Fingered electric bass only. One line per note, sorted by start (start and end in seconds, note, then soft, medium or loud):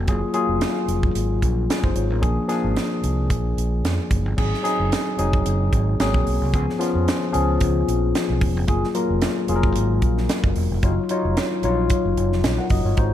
0.08 0.20 F#1 loud
0.49 0.59 F1 medium
0.88 1.10 F1 medium
1.15 1.37 G#1 medium
1.42 1.64 A#1 medium
1.84 1.94 F#1 medium
1.95 2.10 G#1 medium
2.10 2.20 A1 medium
2.23 2.35 A#1 medium
2.64 2.74 G#1 medium
3.03 3.30 C2 medium
3.30 3.52 A#1 medium
3.57 3.79 A#1 medium
3.84 3.96 F2 medium
4.11 4.25 F#1 medium
4.25 4.36 G1 medium
4.38 4.50 G#1 loud
4.80 4.90 F#1 medium
5.19 5.41 F1 medium
5.46 5.68 F#1 medium
5.73 5.95 G#1 medium
6.00 6.11 G#1 loud
6.14 6.24 A#1 medium
6.27 6.39 B1 medium
6.41 6.54 C2 medium
6.54 6.65 C#2 loud
6.95 7.05 F2 medium
7.35 7.56 C#2 medium
7.61 7.83 C#2 medium
7.88 8.10 A#1 medium
8.30 8.39 B1 medium
8.42 8.56 E1 medium
8.56 8.66 F1 medium
8.68 8.80 F#1 loud
9.10 9.20 F1 medium
9.49 9.71 F1 medium
9.76 9.98 G#1 medium
10.02 10.24 A#1 medium
10.44 10.54 F#1 medium
10.57 10.68 E1 medium
10.71 10.81 F1 medium
10.83 10.95 F#1 loud
11.25 11.35 F1 medium
11.64 11.86 A#1 medium
12.05 12.15 F#1 medium
12.17 12.31 F#1 medium
12.31 12.42 F1 medium
12.43 12.56 A#1 medium
12.70 12.83 F#1 medium
12.85 12.95 G1 medium
12.98 13.10 G#1 loud